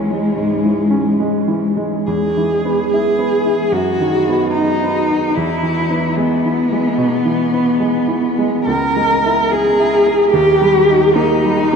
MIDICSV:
0, 0, Header, 1, 3, 480
1, 0, Start_track
1, 0, Tempo, 810811
1, 704, Tempo, 892857
1, 1184, Time_signature, 4, 2, 24, 8
1, 1184, Tempo, 834492
1, 1664, Tempo, 809717
1, 4544, Tempo, 881057
1, 5024, Tempo, 832178
1, 6464, Tempo, 886263
1, 6792, End_track
2, 0, Start_track
2, 0, Title_t, "Cello"
2, 0, Program_c, 0, 42
2, 0, Note_on_c, 0, 56, 48
2, 1175, Note_on_c, 0, 68, 48
2, 1183, Note_off_c, 0, 56, 0
2, 1656, Note_off_c, 0, 68, 0
2, 1660, Note_on_c, 0, 68, 50
2, 2138, Note_on_c, 0, 66, 55
2, 2147, Note_off_c, 0, 68, 0
2, 2616, Note_off_c, 0, 66, 0
2, 2619, Note_on_c, 0, 63, 53
2, 3103, Note_on_c, 0, 64, 53
2, 3112, Note_off_c, 0, 63, 0
2, 3590, Note_on_c, 0, 59, 58
2, 3599, Note_off_c, 0, 64, 0
2, 5020, Note_off_c, 0, 59, 0
2, 5024, Note_on_c, 0, 70, 60
2, 5516, Note_on_c, 0, 68, 63
2, 5524, Note_off_c, 0, 70, 0
2, 5972, Note_off_c, 0, 68, 0
2, 5976, Note_on_c, 0, 67, 67
2, 6461, Note_on_c, 0, 63, 59
2, 6469, Note_off_c, 0, 67, 0
2, 6792, Note_off_c, 0, 63, 0
2, 6792, End_track
3, 0, Start_track
3, 0, Title_t, "Grand piano"
3, 0, Program_c, 1, 0
3, 0, Control_c, 1, 64, 127
3, 0, Note_on_c, 1, 37, 28
3, 0, Note_on_c, 1, 52, 26
3, 0, Note_on_c, 1, 56, 24
3, 0, Note_on_c, 1, 61, 26
3, 61, Note_off_c, 1, 56, 0
3, 61, Note_on_c, 1, 56, 23
3, 156, Note_off_c, 1, 52, 0
3, 196, Note_off_c, 1, 37, 0
3, 216, Note_on_c, 1, 44, 24
3, 317, Note_off_c, 1, 56, 0
3, 377, Note_on_c, 1, 52, 23
3, 474, Note_off_c, 1, 44, 0
3, 535, Note_off_c, 1, 61, 0
3, 535, Note_on_c, 1, 61, 25
3, 636, Note_off_c, 1, 52, 0
3, 707, Note_on_c, 1, 56, 26
3, 793, Note_off_c, 1, 61, 0
3, 858, Note_on_c, 1, 52, 25
3, 959, Note_off_c, 1, 56, 0
3, 1016, Note_on_c, 1, 56, 24
3, 1120, Note_off_c, 1, 52, 0
3, 1180, Note_on_c, 1, 40, 29
3, 1181, Note_off_c, 1, 56, 0
3, 1193, Control_c, 1, 64, 0
3, 1288, Control_c, 1, 64, 127
3, 1350, Note_on_c, 1, 52, 25
3, 1511, Note_on_c, 1, 59, 25
3, 1602, Note_off_c, 1, 52, 0
3, 1676, Note_on_c, 1, 64, 30
3, 1761, Note_off_c, 1, 59, 0
3, 1824, Note_on_c, 1, 59, 26
3, 1924, Note_off_c, 1, 64, 0
3, 1987, Note_on_c, 1, 64, 26
3, 2077, Note_off_c, 1, 59, 0
3, 2113, Note_off_c, 1, 40, 0
3, 2141, Note_on_c, 1, 42, 34
3, 2142, Note_off_c, 1, 64, 0
3, 2150, Control_c, 1, 64, 0
3, 2237, Control_c, 1, 64, 127
3, 2308, Note_on_c, 1, 51, 25
3, 2477, Note_on_c, 1, 59, 28
3, 2559, Note_off_c, 1, 51, 0
3, 2636, Note_on_c, 1, 63, 27
3, 2725, Note_off_c, 1, 59, 0
3, 2803, Note_on_c, 1, 59, 27
3, 2886, Note_off_c, 1, 63, 0
3, 2961, Note_on_c, 1, 63, 29
3, 3050, Note_off_c, 1, 59, 0
3, 3080, Note_off_c, 1, 42, 0
3, 3112, Note_off_c, 1, 63, 0
3, 3113, Control_c, 1, 64, 0
3, 3119, Note_on_c, 1, 40, 33
3, 3193, Control_c, 1, 64, 127
3, 3272, Note_on_c, 1, 52, 26
3, 3434, Note_on_c, 1, 59, 29
3, 3525, Note_off_c, 1, 52, 0
3, 3595, Note_on_c, 1, 56, 31
3, 3686, Note_off_c, 1, 59, 0
3, 3759, Note_on_c, 1, 52, 29
3, 3846, Note_off_c, 1, 56, 0
3, 3920, Note_on_c, 1, 56, 28
3, 4008, Note_off_c, 1, 52, 0
3, 4049, Note_off_c, 1, 40, 0
3, 4073, Note_on_c, 1, 47, 28
3, 4167, Note_off_c, 1, 56, 0
3, 4234, Note_on_c, 1, 52, 28
3, 4323, Note_off_c, 1, 47, 0
3, 4398, Note_on_c, 1, 59, 29
3, 4485, Note_off_c, 1, 52, 0
3, 4557, Note_on_c, 1, 56, 31
3, 4645, Note_off_c, 1, 59, 0
3, 4709, Note_on_c, 1, 52, 29
3, 4805, Note_off_c, 1, 56, 0
3, 4876, Note_on_c, 1, 56, 29
3, 4965, Note_off_c, 1, 52, 0
3, 5031, Note_off_c, 1, 56, 0
3, 5032, Note_on_c, 1, 37, 37
3, 5037, Control_c, 1, 64, 0
3, 5130, Control_c, 1, 64, 127
3, 5202, Note_on_c, 1, 56, 29
3, 5369, Note_on_c, 1, 64, 31
3, 5454, Note_off_c, 1, 56, 0
3, 5529, Note_on_c, 1, 68, 31
3, 5617, Note_off_c, 1, 64, 0
3, 5683, Note_on_c, 1, 64, 32
3, 5775, Note_off_c, 1, 68, 0
3, 5836, Note_on_c, 1, 68, 32
3, 5929, Note_off_c, 1, 64, 0
3, 5967, Note_off_c, 1, 37, 0
3, 5990, Note_off_c, 1, 68, 0
3, 5992, Note_on_c, 1, 39, 39
3, 5997, Control_c, 1, 64, 0
3, 6087, Control_c, 1, 64, 127
3, 6155, Note_on_c, 1, 55, 29
3, 6310, Note_on_c, 1, 63, 33
3, 6405, Note_off_c, 1, 55, 0
3, 6466, Note_on_c, 1, 58, 32
3, 6561, Note_off_c, 1, 63, 0
3, 6626, Note_on_c, 1, 55, 29
3, 6720, Note_off_c, 1, 58, 0
3, 6792, Note_off_c, 1, 39, 0
3, 6792, Note_off_c, 1, 55, 0
3, 6792, End_track
0, 0, End_of_file